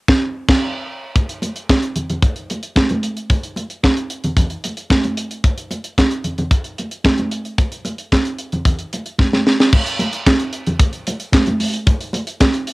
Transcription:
0.08 kick loud
0.08 snare loud
0.48 kick loud
0.48 snare loud
0.48 crash medium
1.16 kick loud
1.16 closed hi-hat medium
1.16 muted conga soft
1.29 closed hi-hat medium
1.42 closed hi-hat medium
1.42 muted conga medium
1.56 closed hi-hat soft
1.69 kick loud
1.69 snare medium
1.69 clap medium
1.69 high conga medium
1.82 closed hi-hat medium
1.96 closed hi-hat medium
1.96 low conga medium
2.10 closed hi-hat soft
2.10 low conga medium
2.23 kick loud
2.23 closed hi-hat medium
2.23 muted conga soft
2.36 closed hi-hat soft
2.50 closed hi-hat medium
2.50 muted conga soft
2.63 closed hi-hat medium
2.76 kick loud
2.76 snare loud
2.76 clap medium
2.76 high conga medium
2.89 closed hi-hat soft
2.89 high conga medium
3.03 closed hi-hat medium
3.17 closed hi-hat soft
3.30 kick loud
3.30 closed hi-hat medium
3.30 muted conga soft
3.43 closed hi-hat medium
3.56 closed hi-hat medium
3.56 muted conga medium
3.70 closed hi-hat medium
3.83 kick loud
3.83 snare loud
3.83 clap medium
3.83 high conga medium
3.97 closed hi-hat medium
4.10 closed hi-hat medium
4.24 closed hi-hat soft
4.24 low conga medium
4.37 kick loud
4.37 closed hi-hat loud
4.37 muted conga soft
4.37 low conga medium
4.50 closed hi-hat soft
4.64 closed hi-hat medium
4.64 muted conga soft
4.77 closed hi-hat medium
4.90 kick loud
4.90 snare loud
4.90 clap medium
4.90 high conga medium
5.04 closed hi-hat soft
5.04 high conga medium
5.17 closed hi-hat medium
5.31 closed hi-hat soft
5.44 kick loud
5.44 closed hi-hat medium
5.44 muted conga soft
5.58 closed hi-hat medium
5.71 closed hi-hat medium
5.71 muted conga medium
5.84 closed hi-hat medium
5.98 kick loud
5.98 snare loud
5.98 clap medium
5.98 high conga medium
6.11 closed hi-hat soft
6.24 closed hi-hat medium
6.24 low conga medium
6.38 closed hi-hat soft
6.38 low conga medium
6.51 kick loud
6.51 closed hi-hat loud
6.64 closed hi-hat soft
6.78 closed hi-hat medium
6.78 muted conga soft
6.91 closed hi-hat soft
7.04 kick loud
7.04 snare loud
7.04 clap medium
7.04 high conga medium
7.18 closed hi-hat soft
7.18 high conga medium
7.31 closed hi-hat medium
7.45 closed hi-hat soft
7.58 kick loud
7.58 closed hi-hat medium
7.58 muted conga soft
7.72 closed hi-hat medium
7.85 closed hi-hat medium
7.85 muted conga medium
7.98 closed hi-hat medium
8.12 kick medium
8.12 snare medium
8.12 clap medium
8.12 high conga medium
8.25 closed hi-hat soft
8.39 closed hi-hat medium
8.52 closed hi-hat soft
8.52 low conga medium
8.65 kick loud
8.65 closed hi-hat loud
8.65 low conga medium
8.79 closed hi-hat soft
8.93 closed hi-hat medium
8.93 muted conga soft
9.06 closed hi-hat soft
9.18 kick loud
9.18 snare soft
9.18 high conga medium
9.33 snare medium
9.33 high conga medium
9.47 snare medium
9.60 snare medium
9.73 kick loud
9.73 crash loud
9.73 muted conga medium
9.86 closed hi-hat medium
9.99 closed hi-hat medium
9.99 muted conga medium
10.13 closed hi-hat medium
10.26 kick loud
10.26 snare loud
10.26 clap medium
10.26 high conga medium
10.39 closed hi-hat medium
10.53 closed hi-hat medium
10.67 closed hi-hat medium
10.67 low conga medium
10.79 kick loud
10.79 closed hi-hat loud
10.79 muted conga soft
10.93 closed hi-hat soft
11.07 closed hi-hat medium
11.07 muted conga medium
11.20 closed hi-hat medium
11.32 kick loud
11.32 snare loud
11.32 clap loud
11.32 high conga medium
11.46 closed hi-hat medium
11.46 high conga medium
11.60 open hi-hat loud
11.60 high conga soft
11.74 closed hi-hat medium
11.87 kick loud
11.87 closed hi-hat medium
11.87 muted conga medium
12.01 closed hi-hat medium
12.13 closed hi-hat medium
12.13 muted conga medium
12.27 closed hi-hat medium
12.40 kick loud
12.40 snare loud
12.40 clap medium
12.40 high conga medium
12.54 closed hi-hat medium
12.67 closed hi-hat medium

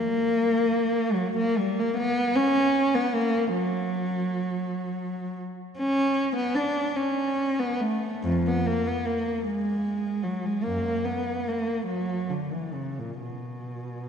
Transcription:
0.00 1.14 A#3 medium
1.13 1.35 F#3 medium
1.37 1.57 A#3 medium
1.57 1.77 G3 medium
1.79 1.97 A#3 medium
1.97 2.34 B3 loud
2.36 2.94 C#4 loud
2.95 3.14 B3 medium
3.14 3.52 A#3 medium
3.52 5.37 F#3 medium
5.77 6.32 C#4 medium
6.36 6.56 B3 loud
6.54 6.95 D4 medium
6.96 7.58 C#4 medium
7.59 7.81 B3 medium
7.80 8.26 A3 medium
8.24 8.46 F2 medium
8.47 8.68 B3 medium
8.66 8.87 A#3 medium
8.87 9.07 B3 medium
9.06 9.46 A#3 medium
9.45 10.22 G#3 medium
10.22 10.44 F#3 medium
10.45 10.65 G#3 medium
10.63 11.02 F#2 medium
10.63 11.05 A#3 medium
11.05 11.46 B3 medium
11.48 11.88 A#3 medium
11.87 12.29 F#3 medium
12.29 12.52 D3 medium
12.53 12.75 E3 medium
12.73 12.97 C#3 soft
12.99 13.22 A#2 soft
13.21 14.09 B2 soft

